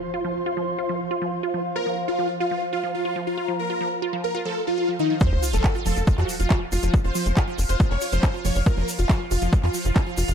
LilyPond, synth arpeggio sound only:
\new Staff \with { instrumentName = "Synth arpeggio sound" } { \clef bass \time 4/4 \tempo 4 = 139 r16 f'16 f16 r16 f'16 f16 r16 f'16 f16 r16 f'16 f16 r16 f'16 f16 r16 | f'16 f16 r16 f'16 f16 r16 f'16 f16 r16 f'16 f16 r16 f'16 f16 r16 f'16 | f16 r16 f'16 f16 r16 f'16 f16 r16 f'16 f16 r16 f16 f'16 f16 ees16 f16 | r8 f'16 f16 r16 f'16 f16 r16 f'16 f16 r16 f'16 f16 r16 f'16 f16 |
r16 f'16 f16 r16 f'16 f16 r16 f'16 f16 r16 f'16 f16 r16 f'16 f16 r16 | f'16 f16 r16 f'16 f16 r16 f'16 f16 r16 f'16 f16 r16 f'16 f16 r16 f'16 | }